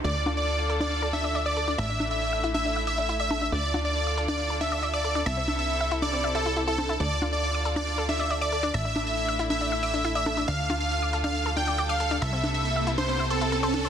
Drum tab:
HH |x-xxx-xxx-xxx-xx|x-xxx-xxx-xxx-xx|x-xxx-xxx-xxx-xx|x-xxx-xxx-xxx-xx|
CG |--o----o--o-----|--o----o------o-|--o----o--o-----|--o----o------o-|

HH |x-xxx-xxx-xxx-xx|x-xxx-xxx-xxx-xx|x-xxx-xxx-xxx-xx|x-xxx-xxx-xxx-xx|
CG |--o----o--o-----|--o----o------o-|--o----o--o-----|--o----o------o-|